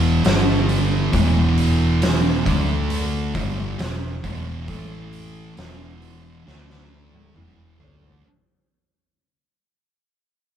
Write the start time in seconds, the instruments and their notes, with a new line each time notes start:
Already playing: fingered electric bass E1, distorted electric guitar E2 B2 E3
0.24 fingered electric bass G1, distorted electric guitar G2 D3 G3, snare, open hi-hat
0.69 open hi-hat
1.12 fingered electric bass E1, distorted electric guitar E2 B2 E3, kick, open hi-hat
1.58 open hi-hat
2.02 snare, open hi-hat
2.45 fingered electric bass D2, distorted electric guitar D3 A3 D4, kick, open hi-hat
2.90 open hi-hat
3.35 fingered electric bass G1, distorted electric guitar G2 D3 G3, kick, open hi-hat
3.79 fingered electric bass E1, distorted electric guitar E2 B2, snare, open hi-hat
4.24 fingered electric bass E1, distorted electric guitar E2 B2 E3, kick, open hi-hat
4.68 fingered electric bass A1, distorted electric guitar A2 E3 A3, kick, open hi-hat
5.13 open hi-hat
5.56 fingered electric bass E1, distorted electric guitar E2 B2 E3, snare, open hi-hat
6.02 open hi-hat
6.46 fingered electric bass D2, distorted electric guitar D3 A3 D4, snare
6.70 snare
7.13 high tom
7.34 fingered electric bass E1, distorted electric guitar E2 B2 E3, mid tom
7.79 fingered electric bass D2, distorted electric guitar D3 A3 D4, floor tom
8.02 floor tom